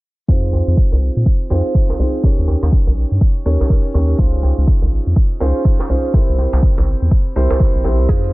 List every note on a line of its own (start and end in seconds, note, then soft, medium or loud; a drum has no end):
0.28 0.63 F2 medium
0.28 1.48 C4 medium
0.28 1.48 D#4 medium
0.28 1.48 F4 medium
0.28 1.48 G#4 medium
0.28 1.48 C5 medium
0.28 kick loud
0.53 djembe tone medium
0.67 0.75 F2 loud
0.77 kick loud
0.92 1.10 C2 medium
0.92 djembe bass medium
1.16 1.24 A#2 medium
1.26 kick loud
1.50 1.62 F2 medium
1.50 1.97 C4 medium
1.50 1.97 D#4 medium
1.50 1.97 F4 medium
1.50 1.97 G#4 medium
1.50 1.97 C5 loud
1.50 djembe slap medium
1.50 djembe tone medium
1.75 kick loud
1.90 djembe slap medium
1.90 djembe tone medium
1.99 2.21 C4 medium
1.99 2.21 D#4 medium
1.99 2.21 F4 medium
1.99 2.21 G#4 medium
1.99 2.21 C5 medium
1.99 djembe bass medium
2.24 3.43 C#4 medium
2.24 3.43 D#4 medium
2.24 3.43 G4 medium
2.24 3.43 A#4 medium
2.24 3.43 C#5 medium
2.24 kick loud
2.38 2.56 D#2 medium
2.48 djembe tone medium
2.62 2.70 D#2 loud
2.62 djembe slap loud
2.72 kick loud
2.87 3.05 A#1 medium
2.87 djembe bass medium
3.11 3.19 G2 medium
3.21 kick loud
3.45 3.57 D#2 medium
3.45 3.92 C#4 medium
3.45 3.92 D#4 medium
3.45 3.92 G4 medium
3.45 3.92 A#4 medium
3.45 3.92 C#5 loud
3.61 djembe slap medium
3.61 djembe bass medium
3.70 kick loud
3.70 djembe tone medium
3.94 4.15 D#2 loud
3.94 4.17 C#4 medium
3.94 4.17 D#4 medium
3.94 4.17 G4 medium
3.94 4.17 A#4 medium
3.94 4.17 C#5 medium
3.94 djembe tone medium
4.19 4.53 C#2 loud
4.19 5.38 C#4 medium
4.19 5.38 D#4 medium
4.19 5.38 F4 medium
4.19 5.38 G#4 medium
4.19 5.38 C5 medium
4.19 kick loud
4.43 djembe tone medium
4.58 4.65 C#2 loud
4.67 kick loud
4.82 5.00 G#1 medium
4.82 djembe bass medium
5.07 5.14 F2 medium
5.16 kick loud
5.40 5.52 C#2 medium
5.40 5.87 C#4 medium
5.40 5.87 D#4 medium
5.40 5.87 F4 medium
5.40 5.87 G#4 medium
5.40 5.87 C5 loud
5.40 djembe slap medium
5.40 djembe tone medium
5.65 kick loud
5.80 djembe slap loud
5.80 djembe tone medium
5.89 6.12 C#4 medium
5.89 6.12 D#4 medium
5.89 6.12 F4 medium
5.89 6.12 G#4 medium
5.89 6.12 C5 medium
5.89 djembe bass medium
6.14 7.34 C4 medium
6.14 7.34 E4 medium
6.14 7.34 G4 medium
6.14 7.34 A#4 medium
6.14 7.34 C5 medium
6.14 kick loud
6.29 6.47 C2 medium
6.38 djembe tone medium
6.53 6.60 C2 loud
6.53 djembe slap medium
6.63 kick loud
6.77 6.95 G1 medium
6.77 djembe slap medium
6.77 djembe bass medium
7.02 7.09 E2 medium
7.11 kick loud
7.36 7.47 C2 medium
7.36 7.82 C4 medium
7.36 7.82 E4 medium
7.36 7.82 G4 medium
7.36 7.82 A#4 medium
7.36 7.82 C5 loud
7.50 djembe slap loud
7.50 djembe bass medium
7.60 kick loud
7.60 djembe tone medium
7.75 7.83 A#1 medium
7.84 8.01 A#1 medium
7.84 8.07 C4 medium
7.84 8.07 E4 medium
7.84 8.07 G4 medium
7.84 8.07 A#4 medium
7.84 8.07 C5 medium
7.84 djembe tone medium
7.99 8.07 C2 medium
8.09 8.33 F2 medium
8.09 8.33 C4 medium
8.09 8.33 D#4 medium
8.09 8.33 F4 medium
8.09 8.22 G#4 medium
8.09 8.33 G#4 medium
8.09 8.33 C5 medium
8.09 kick loud
8.09 maracas medium
8.24 maracas soft